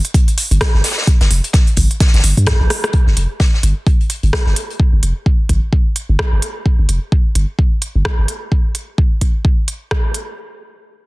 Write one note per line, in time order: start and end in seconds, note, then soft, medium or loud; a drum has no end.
0.05 closed hi-hat soft
0.14 kick loud
0.14 closed hi-hat loud
0.14 closed hi-hat medium
0.28 closed hi-hat soft
0.38 closed hi-hat medium
0.38 open hi-hat medium
0.51 0.58 G1 medium
0.51 closed hi-hat soft
0.61 kick loud
0.61 cross-stick loud
0.61 snare loud
0.61 closed hi-hat medium
0.74 0.81 G1 medium
0.74 snare soft
0.84 snare medium
0.84 closed hi-hat medium
0.84 open hi-hat medium
0.90 snare medium
0.90 closed hi-hat medium
0.98 snare medium
0.98 closed hi-hat medium
1.02 snare medium
1.02 closed hi-hat medium
1.07 kick loud
1.07 closed hi-hat medium
1.21 1.28 G1 loud
1.21 snare loud
1.21 closed hi-hat soft
1.21 closed hi-hat medium
1.31 1.40 F1 medium
1.31 open hi-hat medium
1.44 closed hi-hat medium
1.44 closed hi-hat soft
1.53 kick loud
1.53 snare loud
1.53 closed hi-hat medium
1.67 closed hi-hat soft
1.76 1.87 G1 loud
1.76 kick medium
1.76 closed hi-hat medium
1.76 open hi-hat medium
1.91 closed hi-hat soft
2.00 kick loud
2.00 snare loud
2.00 closed hi-hat medium
2.07 snare medium
2.07 closed hi-hat medium
2.14 2.21 G1 loud
2.14 snare medium
2.14 closed hi-hat medium
2.14 closed hi-hat soft
2.19 snare medium
2.19 closed hi-hat medium
2.24 2.33 G1 loud
2.24 closed hi-hat medium
2.24 open hi-hat medium
2.37 2.53 G2 loud
2.37 closed hi-hat soft
2.46 kick loud
2.46 cross-stick loud
2.46 snare loud
2.46 closed hi-hat loud
2.46 closed hi-hat medium
2.61 2.67 A#1 medium
2.70 cross-stick medium
2.70 closed hi-hat medium
2.70 open hi-hat medium
2.84 cross-stick medium
2.84 closed hi-hat soft
2.93 kick loud
2.93 closed hi-hat medium
3.07 3.14 G1 medium
3.07 snare soft
3.17 3.26 F1 medium
3.17 closed hi-hat medium
3.40 kick loud
3.40 snare loud
3.40 closed hi-hat medium
3.54 snare soft
3.63 3.73 G1 loud
3.63 closed hi-hat medium
3.86 kick loud
3.86 closed hi-hat medium
4.01 closed hi-hat soft
4.10 closed hi-hat medium
4.23 4.30 G1 medium
4.23 closed hi-hat soft
4.33 kick loud
4.33 cross-stick loud
4.33 snare loud
4.33 closed hi-hat medium
4.46 4.53 G1 medium
4.46 snare soft
4.56 closed hi-hat medium
4.56 closed hi-hat loud
4.70 closed hi-hat soft
4.80 kick loud
4.93 5.00 G1 medium
5.03 5.12 F1 medium
5.03 closed hi-hat medium
5.26 kick loud
5.49 5.59 G1 loud
5.49 kick medium
5.49 closed hi-hat medium
5.73 kick loud
5.96 closed hi-hat medium
6.09 6.16 G1 medium
6.19 kick loud
6.19 cross-stick loud
6.33 6.40 G1 medium
6.42 closed hi-hat loud
6.66 kick loud
6.79 6.86 G1 medium
6.89 6.99 F1 medium
6.89 closed hi-hat medium
7.12 kick loud
7.35 7.45 G1 loud
7.35 closed hi-hat loud
7.59 kick loud
7.82 closed hi-hat medium
7.95 8.02 G1 medium
8.05 kick loud
8.05 cross-stick loud
8.19 8.26 G1 medium
8.28 closed hi-hat medium
8.52 kick loud
8.75 closed hi-hat medium
8.98 kick loud
9.21 kick medium
9.21 closed hi-hat medium
9.45 kick loud
9.68 closed hi-hat medium
9.91 kick loud
9.91 cross-stick loud
10.14 closed hi-hat medium